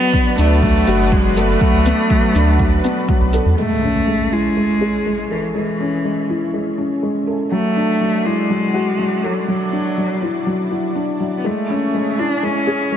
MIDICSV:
0, 0, Header, 1, 7, 480
1, 0, Start_track
1, 0, Key_signature, 3, "major"
1, 0, Tempo, 491803
1, 1573, Time_signature, 4, 2, 24, 8
1, 12658, End_track
2, 0, Start_track
2, 0, Title_t, "Analog synth pad"
2, 0, Program_c, 0, 89
2, 0, Note_on_c, 0, 59, 78
2, 0, Note_on_c, 0, 62, 75
2, 0, Note_on_c, 0, 66, 78
2, 0, Note_on_c, 0, 71, 94
2, 3448, Note_off_c, 0, 62, 0
2, 3449, Note_off_c, 0, 66, 0
2, 3449, Note_off_c, 0, 71, 0
2, 3450, Note_off_c, 0, 59, 0
2, 3495, Note_on_c, 0, 73, 78
2, 3496, Note_on_c, 0, 61, 70
2, 3497, Note_on_c, 0, 64, 66
2, 3497, Note_on_c, 0, 68, 66
2, 7296, Note_off_c, 0, 61, 0
2, 7296, Note_off_c, 0, 73, 0
2, 7297, Note_off_c, 0, 68, 0
2, 7332, Note_on_c, 0, 62, 68
2, 7334, Note_on_c, 0, 74, 87
2, 7335, Note_on_c, 0, 66, 71
2, 11134, Note_off_c, 0, 62, 0
2, 11135, Note_off_c, 0, 74, 0
2, 11136, Note_off_c, 0, 66, 0
2, 11169, Note_on_c, 0, 61, 71
2, 11170, Note_on_c, 0, 73, 83
2, 11172, Note_on_c, 0, 68, 73
2, 12658, Note_off_c, 0, 61, 0
2, 12658, Note_off_c, 0, 64, 0
2, 12658, Note_off_c, 0, 68, 0
2, 12658, Note_off_c, 0, 73, 0
2, 12658, End_track
3, 0, Start_track
3, 0, Title_t, "Cello"
3, 0, Program_c, 1, 42
3, 0, Note_on_c, 1, 59, 106
3, 339, Note_off_c, 1, 59, 0
3, 387, Note_on_c, 1, 57, 101
3, 1096, Note_on_c, 1, 56, 88
3, 1111, Note_off_c, 1, 57, 0
3, 1337, Note_on_c, 1, 57, 92
3, 1352, Note_off_c, 1, 56, 0
3, 3015, Note_off_c, 1, 57, 0
3, 3498, Note_on_c, 1, 57, 88
3, 4223, Note_on_c, 1, 56, 85
3, 4238, Note_off_c, 1, 57, 0
3, 5173, Note_off_c, 1, 56, 0
3, 5179, Note_on_c, 1, 52, 66
3, 5400, Note_off_c, 1, 52, 0
3, 5421, Note_on_c, 1, 52, 66
3, 6338, Note_off_c, 1, 52, 0
3, 7335, Note_on_c, 1, 57, 95
3, 8062, Note_on_c, 1, 56, 91
3, 8077, Note_off_c, 1, 57, 0
3, 9019, Note_on_c, 1, 54, 75
3, 9034, Note_off_c, 1, 56, 0
3, 9177, Note_off_c, 1, 54, 0
3, 9183, Note_on_c, 1, 56, 47
3, 9259, Note_on_c, 1, 54, 71
3, 9273, Note_off_c, 1, 56, 0
3, 10216, Note_off_c, 1, 54, 0
3, 11106, Note_on_c, 1, 59, 53
3, 11175, Note_on_c, 1, 57, 72
3, 11189, Note_off_c, 1, 59, 0
3, 11892, Note_on_c, 1, 62, 81
3, 11907, Note_off_c, 1, 57, 0
3, 12135, Note_on_c, 1, 61, 82
3, 12149, Note_off_c, 1, 62, 0
3, 12658, Note_off_c, 1, 61, 0
3, 12658, End_track
4, 0, Start_track
4, 0, Title_t, "Felt piano"
4, 0, Program_c, 2, 0
4, 0, Control_c, 2, 64, 127
4, 0, Note_on_c, 2, 54, 92
4, 0, Note_on_c, 2, 59, 71
4, 118, Note_off_c, 2, 59, 0
4, 133, Note_off_c, 2, 54, 0
4, 133, Note_on_c, 2, 54, 69
4, 361, Note_off_c, 2, 54, 0
4, 372, Note_on_c, 2, 62, 64
4, 601, Note_off_c, 2, 62, 0
4, 613, Note_on_c, 2, 54, 74
4, 841, Note_off_c, 2, 54, 0
4, 852, Note_on_c, 2, 66, 92
4, 1080, Note_off_c, 2, 66, 0
4, 1092, Note_on_c, 2, 54, 66
4, 1230, Note_off_c, 2, 54, 0
4, 1332, Note_on_c, 2, 69, 71
4, 1561, Note_off_c, 2, 69, 0
4, 1573, Note_on_c, 2, 54, 71
4, 1801, Note_off_c, 2, 54, 0
4, 1812, Note_on_c, 2, 59, 73
4, 2041, Note_off_c, 2, 59, 0
4, 2053, Note_on_c, 2, 54, 75
4, 2281, Note_off_c, 2, 54, 0
4, 2292, Note_on_c, 2, 62, 73
4, 2521, Note_off_c, 2, 62, 0
4, 2531, Note_on_c, 2, 54, 76
4, 2760, Note_off_c, 2, 54, 0
4, 2774, Note_on_c, 2, 59, 75
4, 3002, Note_off_c, 2, 59, 0
4, 3014, Note_on_c, 2, 54, 69
4, 3150, Note_off_c, 2, 54, 0
4, 3255, Note_on_c, 2, 69, 74
4, 3482, Note_off_c, 2, 69, 0
4, 3493, Note_on_c, 2, 56, 66
4, 3504, Control_c, 2, 64, 0
4, 3672, Control_c, 2, 64, 127
4, 3721, Note_off_c, 2, 56, 0
4, 3734, Note_on_c, 2, 61, 62
4, 3961, Note_off_c, 2, 61, 0
4, 3973, Note_on_c, 2, 56, 59
4, 4201, Note_off_c, 2, 56, 0
4, 4211, Note_on_c, 2, 64, 56
4, 4440, Note_off_c, 2, 64, 0
4, 4457, Note_on_c, 2, 56, 59
4, 4683, Note_off_c, 2, 56, 0
4, 4695, Note_on_c, 2, 68, 72
4, 4922, Note_off_c, 2, 68, 0
4, 4937, Note_on_c, 2, 56, 59
4, 5072, Note_off_c, 2, 56, 0
4, 5178, Note_on_c, 2, 69, 58
4, 5403, Note_off_c, 2, 69, 0
4, 5416, Note_on_c, 2, 56, 56
4, 5643, Note_off_c, 2, 56, 0
4, 5660, Note_on_c, 2, 61, 61
4, 5885, Note_off_c, 2, 61, 0
4, 5901, Note_on_c, 2, 56, 60
4, 6125, Note_off_c, 2, 56, 0
4, 6140, Note_on_c, 2, 64, 55
4, 6364, Note_off_c, 2, 64, 0
4, 6379, Note_on_c, 2, 56, 58
4, 6604, Note_off_c, 2, 56, 0
4, 6617, Note_on_c, 2, 61, 60
4, 6843, Note_off_c, 2, 61, 0
4, 6858, Note_on_c, 2, 56, 57
4, 6992, Note_off_c, 2, 56, 0
4, 7095, Note_on_c, 2, 69, 58
4, 7322, Note_off_c, 2, 69, 0
4, 7335, Note_on_c, 2, 54, 78
4, 7347, Control_c, 2, 64, 0
4, 7497, Control_c, 2, 64, 127
4, 7562, Note_off_c, 2, 54, 0
4, 7577, Note_on_c, 2, 62, 62
4, 7803, Note_off_c, 2, 62, 0
4, 7816, Note_on_c, 2, 54, 61
4, 8043, Note_off_c, 2, 54, 0
4, 8055, Note_on_c, 2, 64, 57
4, 8282, Note_off_c, 2, 64, 0
4, 8295, Note_on_c, 2, 54, 67
4, 8522, Note_off_c, 2, 54, 0
4, 8532, Note_on_c, 2, 66, 83
4, 8760, Note_off_c, 2, 66, 0
4, 8771, Note_on_c, 2, 54, 58
4, 8909, Note_off_c, 2, 54, 0
4, 9012, Note_on_c, 2, 69, 57
4, 9241, Note_off_c, 2, 69, 0
4, 9250, Note_on_c, 2, 54, 59
4, 9480, Note_off_c, 2, 54, 0
4, 9489, Note_on_c, 2, 62, 58
4, 9719, Note_off_c, 2, 62, 0
4, 9733, Note_on_c, 2, 54, 61
4, 9961, Note_off_c, 2, 54, 0
4, 9975, Note_on_c, 2, 64, 57
4, 10202, Note_off_c, 2, 64, 0
4, 10212, Note_on_c, 2, 54, 64
4, 10440, Note_off_c, 2, 54, 0
4, 10450, Note_on_c, 2, 64, 58
4, 10680, Note_off_c, 2, 64, 0
4, 10690, Note_on_c, 2, 62, 56
4, 10920, Note_off_c, 2, 62, 0
4, 10931, Note_on_c, 2, 54, 57
4, 11160, Note_off_c, 2, 54, 0
4, 11170, Note_on_c, 2, 56, 71
4, 11187, Control_c, 2, 64, 0
4, 11352, Control_c, 2, 64, 127
4, 11399, Note_off_c, 2, 56, 0
4, 11412, Note_on_c, 2, 61, 64
4, 11640, Note_off_c, 2, 61, 0
4, 11654, Note_on_c, 2, 56, 59
4, 11882, Note_off_c, 2, 56, 0
4, 11891, Note_on_c, 2, 64, 60
4, 12120, Note_off_c, 2, 64, 0
4, 12131, Note_on_c, 2, 56, 61
4, 12360, Note_off_c, 2, 56, 0
4, 12367, Note_on_c, 2, 68, 82
4, 12598, Note_off_c, 2, 68, 0
4, 12608, Note_on_c, 2, 56, 63
4, 12658, Note_off_c, 2, 56, 0
4, 12658, End_track
5, 0, Start_track
5, 0, Title_t, "Analog synth bass"
5, 0, Program_c, 3, 38
5, 374, Note_on_c, 3, 38, 79
5, 805, Note_off_c, 3, 38, 0
5, 855, Note_on_c, 3, 30, 77
5, 1526, Note_off_c, 3, 30, 0
5, 1694, Note_on_c, 3, 37, 78
5, 1873, Note_off_c, 3, 37, 0
5, 2296, Note_on_c, 3, 38, 81
5, 2726, Note_off_c, 3, 38, 0
5, 3135, Note_on_c, 3, 35, 84
5, 3313, Note_off_c, 3, 35, 0
5, 3374, Note_on_c, 3, 40, 82
5, 3463, Note_off_c, 3, 40, 0
5, 12658, End_track
6, 0, Start_track
6, 0, Title_t, "Impact"
6, 0, Program_c, 4, 103
6, 3492, Note_on_c, 4, 60, 51
6, 5412, Note_off_c, 4, 60, 0
6, 12658, End_track
7, 0, Start_track
7, 0, Title_t, "Drums"
7, 132, Note_on_c, 9, 36, 93
7, 229, Note_off_c, 9, 36, 0
7, 371, Note_on_c, 9, 82, 58
7, 469, Note_off_c, 9, 82, 0
7, 612, Note_on_c, 9, 36, 88
7, 710, Note_off_c, 9, 36, 0
7, 850, Note_on_c, 9, 82, 55
7, 947, Note_off_c, 9, 82, 0
7, 1093, Note_on_c, 9, 36, 89
7, 1190, Note_off_c, 9, 36, 0
7, 1334, Note_on_c, 9, 82, 59
7, 1432, Note_off_c, 9, 82, 0
7, 1573, Note_on_c, 9, 36, 98
7, 1671, Note_off_c, 9, 36, 0
7, 1810, Note_on_c, 9, 82, 52
7, 1907, Note_off_c, 9, 82, 0
7, 2052, Note_on_c, 9, 36, 87
7, 2150, Note_off_c, 9, 36, 0
7, 2293, Note_on_c, 9, 82, 57
7, 2391, Note_off_c, 9, 82, 0
7, 2532, Note_on_c, 9, 36, 88
7, 2629, Note_off_c, 9, 36, 0
7, 2772, Note_on_c, 9, 82, 57
7, 2870, Note_off_c, 9, 82, 0
7, 3012, Note_on_c, 9, 36, 88
7, 3109, Note_off_c, 9, 36, 0
7, 3251, Note_on_c, 9, 82, 55
7, 3348, Note_off_c, 9, 82, 0
7, 12658, End_track
0, 0, End_of_file